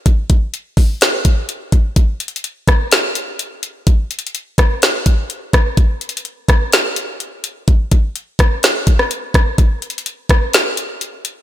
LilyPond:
\new DrumStaff \with { instrumentName = "Drums" } \drummode { \time 4/4 \tempo 4 = 126 <hh bd>8 <hh bd>8 hh8 <hho bd>8 <hh sn>8 <hh bd>8 hh8 <hh bd>8 | \tuplet 3/2 { <hh bd>16 r16 r16 hh16 hh16 hh16 } hh8 <hh bd ss>8 <hh sn>8 hh8 hh8 hh8 | \tuplet 3/2 { <hh bd>16 r16 r16 hh16 hh16 hh16 } hh8 <hh bd ss>8 <hh sn>8 <hh bd>8 hh8 <hh bd ss>8 | \tuplet 3/2 { <hh bd>16 r16 r16 hh16 hh16 hh16 } hh8 <hh bd ss>8 <hh sn>8 hh8 hh8 hh8 |
<hh bd>8 <hh bd>8 hh8 <hh bd ss>8 <hh sn>8 <hh bd>16 ss16 hh8 <hh bd ss>8 | \tuplet 3/2 { <hh bd>16 r16 r16 hh16 hh16 hh16 } hh8 <hh bd ss>8 <hh sn>8 hh8 hh8 hh8 | }